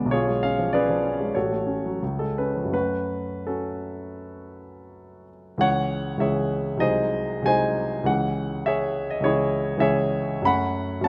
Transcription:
Already playing: B1 D3 G#3 B3 D4 G#4 B4 D5 E5
0.05 B1
0.11 F4 G#4 C#5
0.28 G#3
0.43 C#4 F5
0.59 F3
0.73 C#4 G#4 B4 D5
0.90 F3
1.04 C#4
1.20 G#3
1.35 A1 F#4 A4 C#5
1.52 A3
1.67 C#4
1.85 F#3
2.02 C#2
2.19 G#3 A4
2.38 C#4 B4
2.55 F3
2.65 F#2
2.70 F#3 A3 C#4 F#4 B4
3.47 C#4 F#4 A4
5.58 C#2 E3 G#3 C#4 C#5 F#5
6.17 C#2 E3 G#3 C#4 G#4 C#5 E5
6.77 C2 F#3 G#3 D#4 D#5
6.81 G#4 C5
7.42 C2 F#3 G#3 D#4 G#5
7.47 C5 D#5
8.03 C#2 E3 G#3 C#4 F#5
8.66 G#4 C#5 E5
9.10 D#5
9.20 C#2 E3 G#3 C#4 C#5
9.25 E4 G#4
9.77 C#2 E3 G#3 C#4 G#4 E5
9.82 C#5
10.42 F#2 F#3 A3 C#4 B5
10.47 F#5
11.01 F#2 F#3 A3 C#4 A5

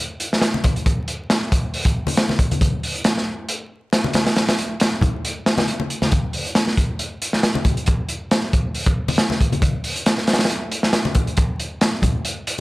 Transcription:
0.20 closed hi-hat
0.33 snare
0.42 snare, closed hi-hat
0.54 muted conga
0.64 kick, closed hi-hat, muted conga
0.76 closed hi-hat
0.86 kick, closed hi-hat
1.08 closed hi-hat
1.30 snare, closed hi-hat
1.52 kick, closed hi-hat
1.74 open hi-hat
1.85 kick, closed hi-hat
2.07 open hi-hat, muted conga
2.17 snare, closed hi-hat
2.29 snare, muted conga
2.39 kick, closed hi-hat
2.51 closed hi-hat, high conga
2.61 kick, closed hi-hat
2.83 open hi-hat
2.95 closed hi-hat
3.04 snare, closed hi-hat
3.18 snare
3.49 closed hi-hat
3.93 snare, closed hi-hat
4.04 muted conga
4.13 snare, closed hi-hat, muted conga
4.26 snare, closed hi-hat
4.36 snare, closed hi-hat
4.48 snare, closed hi-hat
4.58 closed hi-hat
4.80 snare, closed hi-hat
5.01 kick, closed hi-hat, low conga
5.25 closed hi-hat
5.46 snare, closed hi-hat
5.58 snare, closed hi-hat, muted conga
5.68 closed hi-hat
5.80 muted conga
5.90 closed hi-hat
6.02 snare, high conga
6.11 kick, closed hi-hat
6.33 open hi-hat
6.47 closed hi-hat
6.55 snare, closed hi-hat
6.67 snare
6.77 kick, closed hi-hat
6.99 closed hi-hat
7.22 closed hi-hat
7.33 snare
7.43 snare, closed hi-hat
7.55 muted conga
7.65 kick, closed hi-hat, muted conga
7.77 closed hi-hat
7.86 kick, closed hi-hat
8.09 closed hi-hat
8.31 snare, closed hi-hat
8.53 kick, closed hi-hat
8.75 open hi-hat
8.86 kick, closed hi-hat
9.08 open hi-hat, muted conga
9.18 snare, closed hi-hat
9.30 snare, muted conga
9.41 kick, closed hi-hat
9.52 closed hi-hat, high conga
9.62 kick, closed hi-hat
9.84 open hi-hat
9.96 closed hi-hat
10.06 snare, closed hi-hat
10.18 snare
10.27 snare, closed hi-hat
10.33 snare, closed hi-hat
10.39 snare, closed hi-hat
10.44 snare, closed hi-hat
10.49 closed hi-hat
10.72 closed hi-hat
10.83 snare
10.93 snare, closed hi-hat
11.05 muted conga
11.15 kick, closed hi-hat, muted conga
11.27 closed hi-hat
11.37 kick, closed hi-hat
11.60 closed hi-hat
11.81 snare, closed hi-hat
12.02 kick, closed hi-hat, low conga
12.25 closed hi-hat
12.47 closed hi-hat

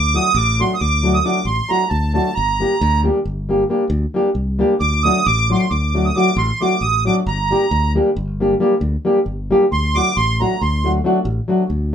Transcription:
Already playing: D2 D6
0.14 F#3 A3 D4 F#4 D#6
0.34 A1 D6
0.59 F#3 A3 D4 F#4 C6
0.74 D#6
0.80 D2 D6
1.03 F#3 A3 D4 F#4
1.14 D#6
1.25 F#3 A3 D4 F#4 D6
1.45 A1 C6
1.69 F#3 A3 D4 F#4 A#5
1.89 D2 A5
2.13 F#3 A3 D4 F#4 A5
2.35 G1 A#5
2.60 G3 A#3 D4 G4
2.81 D2
3.04 G3 A#3 D4 G4
3.25 G1
3.49 G3 A#3 D4 G4
3.69 G3 A#3 D4 G4
3.90 D2
4.14 G3 A#3 D4 G4
4.35 C2
4.59 G3 A#3 D4 G4
4.80 D2 D6
5.03 F#3 A3 D4 F#4 D#6
5.26 A1 D6
5.50 F#3 A3 D4 F#4 C6
5.54 D6
5.59 C6
5.71 D2 D6
5.94 F#3 A3 D4 F#4
6.05 D#6
6.16 F#3 A3 D4 F#4 D6
6.36 A1 C6
6.61 F#3 A3 D4 F#4 D6
6.81 A1 D#6
7.05 F#3 A3 D4 F#4 D6
7.26 G1 A#5
7.50 G3 A#3 D4 G4
7.71 D2
7.95 G3 A#3 D4 G4
8.17 G1
8.40 G3 A#3 D4 G4
8.60 G3 A#3 D4 G4
8.81 D2
9.05 G3 A#3 D4 G4
9.26 G1
9.51 G3 A#3 D4 G4
9.72 D2 C6
9.95 F#3 A3 D4 F#4 D6
10.17 A1 C6
10.40 F#3 A3 D4 F#4 A#5
10.61 D2 C6
10.84 F#3 A3 D4 F#4
11.04 F#3 A3 D4 F#4
11.25 A1
11.48 F#3 A3 D4 F#4
11.70 D2

